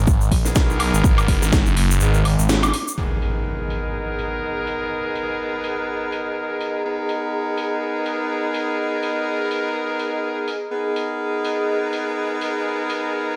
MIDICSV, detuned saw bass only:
0, 0, Header, 1, 2, 480
1, 0, Start_track
1, 0, Key_signature, 5, "minor"
1, 0, Tempo, 483871
1, 1034, Time_signature, 4, 2, 24, 8
1, 13256, End_track
2, 0, Start_track
2, 0, Title_t, "Detuned saw bass"
2, 0, Program_c, 0, 39
2, 0, Note_on_c, 0, 32, 96
2, 297, Note_off_c, 0, 32, 0
2, 313, Note_on_c, 0, 34, 97
2, 537, Note_off_c, 0, 34, 0
2, 553, Note_on_c, 0, 35, 96
2, 908, Note_off_c, 0, 35, 0
2, 931, Note_on_c, 0, 32, 98
2, 1389, Note_off_c, 0, 32, 0
2, 1411, Note_on_c, 0, 32, 94
2, 1629, Note_off_c, 0, 32, 0
2, 1651, Note_on_c, 0, 30, 95
2, 1977, Note_off_c, 0, 30, 0
2, 1994, Note_on_c, 0, 32, 97
2, 2349, Note_off_c, 0, 32, 0
2, 2371, Note_on_c, 0, 32, 98
2, 2697, Note_off_c, 0, 32, 0
2, 13256, End_track
0, 0, End_of_file